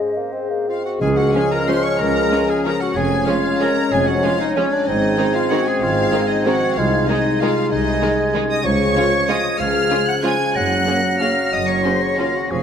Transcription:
Already playing: bassoon G#3, harp G#4 D#5, flute D#5
0.00 harp G#2, clarinet C5
0.16 bassoon A#3, harp C4
0.32 bassoon C4, harp G#4
0.50 bassoon A#3, harp D#5
0.68 bassoon C4, clarinet F4, harp C5, violin section F5
0.84 clarinet F#4, harp G#4, violin section F#5
1.00 double bass section C#2, cello section C#2, harp C#3, timpani C#3, french horn section F3 C#4, bassoon G#3, clarinet G#4, violin section G#5, flute F6
1.17 harp F4, clarinet F#4, violin section F#5
1.34 viola section F3 G#3, harp C#4, violin section C#4 G#5, clarinet G#4
1.52 harp D#4, clarinet A#4, violin section A#5
1.67 viola section F3 G#3, violin section C#4 C6, harp C#4, clarinet C5
1.83 clarinet C#5, violin section C#6
1.99 double bass section C#2, cello section C#2, harp C#3, clarinet A#4, violin section A#5
2.16 harp C#4
2.31 viola section F3 G#3, harp G#3, violin section C#4
2.49 harp A#3, clarinet G#4, violin section G#5
2.65 viola section F3 G#3, violin section C#4 A#5, harp C#4, clarinet A#4
2.81 clarinet F#4, violin section F#5
2.94 double bass section F1, harp F2, cello section F2, french horn section G#3 C#4, bassoon C#4, clarinet G#4, violin section G#5, flute G#6
3.11 harp F4
3.26 viola section F3 G#3, violin section C#4 F5, harp C#4, bassoon C#4, clarinet F4, flute G#6
3.44 harp D#4
3.60 viola section F3 G#3, violin section C#4 A#5, harp C#4, clarinet A#4
3.77 harp F4
3.92 double bass section F1, harp F2, cello section F2, bassoon C#4, clarinet G#4, violin section G#5, flute G#6
4.06 harp C#4, clarinet F#4, violin section F#5
4.23 viola section F3 G#3, harp F3, violin section C#4 F5, clarinet F4
4.40 harp F#3, clarinet D#4, violin section D#5
4.55 viola section F3 G#3, bassoon C#4, violin section C#4 C#5, clarinet C#4, harp C#4, flute G#6
4.72 clarinet D4, harp F4, violin section D5
4.86 double bass section G#1, harp G#2, cello section G#2, french horn section G#3 C4, bassoon C4, clarinet D#4, violin section D#5, flute G#6
5.03 harp D#4
5.17 viola section D#3 G#3, harp C4, violin section C4 D#4
5.34 harp C#4, clarinet F4, violin section F5
5.50 viola section D#3 G#3, harp C4, violin section C4 D#4 F#5, clarinet F#4
5.66 harp D#4, clarinet G#4, violin section G#5
5.81 double bass section G#1, harp G#2, cello section G#2, clarinet F4, violin section F5
5.97 harp C4
6.12 viola section D#3 G#3, harp D#3, violin section C4 D#4
6.28 harp F3, clarinet D#4, violin section D#5
6.45 viola section D#3 G#3, violin section C4 D#4 F#5, clarinet F#4
6.75 double bass section C2, cello section C2, harp C3, french horn section G#3 D#4, bassoon G#3, clarinet F4, violin section F5, flute G#6
6.93 harp D#4
7.08 viola section D#3 G#3, harp G#3, bassoon G#3, violin section G#3 D#4 D#5, clarinet D#4, flute G#6
7.25 harp A#3
7.41 viola section D#3 G#3, harp G#3, violin section G#3 D#4 F5, clarinet F4
7.57 harp D#4
7.71 double bass section C2, cello section C2, harp C3, bassoon G#3, clarinet D#4, violin section D#5, flute G#6
7.86 harp G#3
8.02 viola section D#3 G#3, violin section G#3 D#4, harp C4
8.18 harp C#4
8.34 viola section D#3 G#3, harp G#3, violin section G#3 D#4
8.49 harp D#4, clarinet D#5, violin section D#6
8.64 double bass section C#2, cello section C#2, harp C#3, bassoon F3, clarinet C#5, violin section C#6, flute G#6
8.80 harp F4
8.96 viola section C#3 G#3, harp G#3, french horn section G#3 F4, violin section C#4 F4
9.13 harp A#3
9.28 viola section C#3 G#3, harp G#3, french horn section G#3 F4, violin section C#4 F4 D#6, clarinet D#5
9.45 harp F4
9.59 double bass section C#2, cello section C#2, harp C#3, bassoon F3, clarinet F5, violin section F6, flute G#6
9.75 harp G#3
9.90 viola section C#3 G#3, french horn section G#3 F4, violin section C#4 F4, harp C#4
10.07 harp D#4, clarinet F#5, violin section F#6
10.23 viola section C#3 G#3, bassoon F3, harp G#3, french horn section G#3 F4, violin section C#4 F4 G#6, clarinet G#5, flute G#6
10.40 harp F4
10.55 double bass section F#1, harp F#2, cello section F#2, bassoon F#3, clarinet F#5, violin section F#6, flute A#6
10.71 harp C#4
10.87 viola section C#3 A#3, harp A#3, french horn section A#3 C#4, violin section C#4
11.04 harp C4
11.20 viola section C#3 A#3, french horn section A#3 C#4, violin section C#4 F6, clarinet F5
11.37 harp C#4
11.52 double bass section F#1, harp F#2, cello section F#2, clarinet D#5, violin section D#6
11.68 harp A#3, clarinet C#5, violin section C#6
11.84 viola section C#3 A#3, harp C#3, french horn section A#3 C#4, violin section C#4 C6, clarinet C5
12.02 harp D#3, clarinet C#5, violin section C#6
12.19 viola section C#3 A#3, harp A#3, french horn section A#3 C#4, violin section C#4 F5, clarinet F4
12.35 harp C#4, clarinet F#4, violin section F#5
12.51 double bass section F1, cello section F2, harp F2, bassoon F3, clarinet G#4, violin section G#5, flute C#6

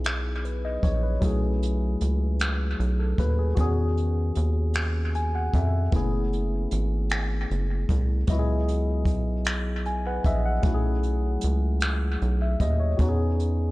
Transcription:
Already playing: analog synth bass B1, tine electric piano F#3 B3 D#4 E4 G#4
0.04 finger snap, closed hi-hat
0.45 tine electric piano B4, closed hi-hat
0.65 tine electric piano D#5
0.83 analog synth bass A#1, tine electric piano C#5, kick, closed hi-hat
1.03 tine electric piano B4
1.20 analog synth bass B1, tine electric piano F#3 A3 C#4 E4, kick, closed hi-hat
1.25 tine electric piano G#4
1.63 closed hi-hat
2.01 analog synth bass C#2, closed hi-hat
2.39 finger snap, closed hi-hat
2.79 analog synth bass B1, closed hi-hat
2.99 tine electric piano A4
3.18 analog synth bass D#2, tine electric piano B4, kick, closed hi-hat
3.39 tine electric piano G#4
3.55 analog synth bass E2, tine electric piano D#3 B3 C#4 F#4, kick, closed hi-hat
3.60 tine electric piano G#4
3.97 closed hi-hat
4.35 analog synth bass D#2, closed hi-hat
4.74 finger snap, closed hi-hat
5.15 tine electric piano G#5, closed hi-hat
5.35 tine electric piano F#5
5.54 analog synth bass F2, tine electric piano E5, kick, closed hi-hat
5.91 analog synth bass F#1, tine electric piano A3 B3 C#4 E4, kick, closed hi-hat
5.96 tine electric piano G#4
6.33 closed hi-hat
6.71 analog synth bass G#1, closed hi-hat
7.10 finger snap, closed hi-hat
7.51 analog synth bass F#1, closed hi-hat
7.89 analog synth bass C2, kick, closed hi-hat
8.27 analog synth bass C#2, tine electric piano F#3 B3 E4 D#5, kick, closed hi-hat
8.32 tine electric piano F#4
8.39 tine electric piano G#4
8.68 closed hi-hat
9.05 analog synth bass B1, kick, closed hi-hat
9.45 finger snap, closed hi-hat
9.86 tine electric piano G#5, closed hi-hat
10.07 tine electric piano B4 F#5
10.24 analog synth bass A#1, tine electric piano D#5 E5, kick, closed hi-hat
10.46 tine electric piano F#5
10.62 analog synth bass B1, tine electric piano F#3 A3 C#4, kick, closed hi-hat
10.66 tine electric piano E4 F#4
10.74 tine electric piano G#4
11.03 closed hi-hat
11.41 analog synth bass C#2, closed hi-hat
11.80 finger snap, closed hi-hat
12.22 analog synth bass B1, closed hi-hat
12.42 tine electric piano E5
12.60 analog synth bass D#2, tine electric piano D#5, kick, closed hi-hat
12.80 tine electric piano C#5
12.97 analog synth bass E2, tine electric piano B3 C#4 D#4 F#4, kick, closed hi-hat
13.02 tine electric piano F#4
13.09 tine electric piano G#4
13.40 closed hi-hat

